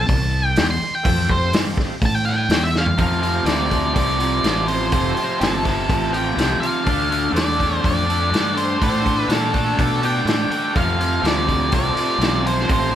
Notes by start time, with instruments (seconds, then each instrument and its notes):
Already playing: lead electric guitar A5
0.09 fingered electric bass C2, kick, open hi-hat
0.46 lead electric guitar G5
0.56 fingered electric bass E2, snare, open hi-hat
0.71 lead electric guitar C6
0.82 muted fingered electric bass stroke
0.95 lead electric guitar G5
1.03 fingered electric bass F2, tonewheel organ A3 C4 F4 A4, kick, open hi-hat
1.25 tonewheel organ A3 C4 F4 G4
1.29 lead electric guitar C5, kick
1.53 fingered electric bass G2, snare, open hi-hat
1.77 muted fingered electric bass stroke, kick, snare
2.02 fingered electric bass A2, lead electric guitar A5, kick, open hi-hat
2.15 lead electric guitar G5
2.25 lead electric guitar E5 G5
2.37 lead electric guitar A5
2.49 fingered electric bass E2, lead electric guitar G5, snare, open hi-hat
2.64 lead electric guitar E5
2.75 lead electric guitar F5, snare
2.86 floor tom
2.97 overdriven electric guitar F2 C3 F3, fingered electric bass F2, tonewheel organ A3 C4 F4 A4, lead electric guitar F5, kick, open hi-hat
3.20 overdriven electric guitar F2 C3 F3, open hi-hat
3.34 tonewheel organ A3 C4 F4 C5
3.44 fingered electric bass D2, overdriven electric guitar F2 C3 F3, lead electric guitar D5, snare, open hi-hat
3.70 overdriven electric guitar F2 C3 F3, kick, open hi-hat
3.94 fingered electric bass C2, overdriven electric guitar F2 C3 F3, tonewheel organ A3 C4 F4 C5, lead electric guitar D5, kick, open hi-hat
4.18 overdriven electric guitar F2 C3 F3, open hi-hat
4.43 fingered electric bass A1, overdriven electric guitar F2 C3 F3, snare, open hi-hat
4.67 overdriven electric guitar F2 C3 F3, lead electric guitar C5, open hi-hat
4.90 fingered electric bass F1, overdriven electric guitar F2 C3 F3, tonewheel organ A3 C4 F4 A4, lead electric guitar C5, kick, open hi-hat
5.15 overdriven electric guitar F2 C3 F3, lead electric guitar C5, muted fingered electric bass stroke, open hi-hat
5.29 tonewheel organ A3 C4 F4 C5
5.40 fingered electric bass G1, overdriven electric guitar F2 C3 F3, lead electric guitar A4, snare, open hi-hat
5.63 overdriven electric guitar F2 C3 F3, kick, snare, open hi-hat
5.87 fingered electric bass A1, overdriven electric guitar F2 C3 F3, tonewheel organ F4, kick, open hi-hat
5.92 tonewheel organ A3 C4 B4
6.12 overdriven electric guitar F2 C3 F3, lead electric guitar G5, open hi-hat
6.35 fingered electric bass C2, overdriven electric guitar F2 C3 F3, open hi-hat
6.40 snare
6.60 overdriven electric guitar F2 C3 F3, lead electric guitar F5, muted fingered electric bass stroke, open hi-hat
6.84 fingered electric bass D2, overdriven electric guitar D3 A3 D4, tonewheel organ A3 D4 F4 A4, kick, open hi-hat
7.10 overdriven electric guitar D3 A3 D4, open hi-hat
7.23 tonewheel organ A3 D4 F4 A4
7.33 fingered electric bass E2, overdriven electric guitar D3 A3 D4, lead electric guitar D5, open hi-hat
7.38 snare
7.57 overdriven electric guitar D3 A3 D4, kick, open hi-hat
7.62 snare
7.81 fingered electric bass F2, overdriven electric guitar D3 A3 D4, tonewheel organ A3 D4 F4, kick
7.85 tonewheel organ A4, lead electric guitar D5, open hi-hat
8.05 overdriven electric guitar D3 A3 D4
8.10 open hi-hat
8.29 fingered electric bass G2, overdriven electric guitar D3 A3 D4
8.34 snare, open hi-hat
8.54 overdriven electric guitar D3 A3 D4, lead electric guitar C5, open hi-hat
8.78 fingered electric bass A2, overdriven electric guitar D3 A3 D4, tonewheel organ A3 D4 F4 A4, kick, open hi-hat
8.83 lead electric guitar C5
9.02 overdriven electric guitar D3 A3 D4, kick, open hi-hat
9.17 tonewheel organ A3 D4 F4 A4, lead electric guitar B4
9.27 fingered electric bass A#2, overdriven electric guitar D3 A3 D4, open hi-hat
9.31 lead electric guitar A4, snare
9.52 overdriven electric guitar D3 A3 D4, kick, open hi-hat
9.77 fingered electric bass B2, overdriven electric guitar D3 A3 D4, tonewheel organ A3 D4 F4 A4, kick, open hi-hat
9.81 lead electric guitar A4
10.00 overdriven electric guitar D3 A3 D4, open hi-hat
10.04 lead electric guitar G5
10.25 fingered electric bass A2, overdriven electric guitar D3 A3 D4, snare, open hi-hat
10.50 overdriven electric guitar D3 A3 D4, muted fingered electric bass stroke, open hi-hat
10.72 overdriven electric guitar F2 C3 F3, fingered electric bass F2, tonewheel organ A3 C4 F4 A4, kick, open hi-hat
10.77 lead electric guitar F5
10.97 overdriven electric guitar F2 C3 F3, open hi-hat
11.12 tonewheel organ A3 C4 F4 A4
11.21 fingered electric bass D2, overdriven electric guitar F2 C3 F3
11.25 lead electric guitar D5, snare, open hi-hat
11.46 overdriven electric guitar F2 C3 F3, kick, open hi-hat
11.70 fingered electric bass C2, overdriven electric guitar F2 C3 F3, tonewheel organ A3 C4 F4 A4, kick, open hi-hat
11.75 lead electric guitar D5
11.94 overdriven electric guitar F2 C3 F3, muted fingered electric bass stroke, open hi-hat
12.18 fingered electric bass B1, overdriven electric guitar F2 C3 F3, open hi-hat
12.23 snare
12.42 overdriven electric guitar F2 C3 F3
12.47 lead electric guitar C5, open hi-hat
12.59 snare
12.67 fingered electric bass A1, overdriven electric guitar F2 C3 F3, tonewheel organ A3 C4 F4 A4, kick, open hi-hat
12.72 lead electric guitar C5
12.91 overdriven electric guitar F2 C3 F3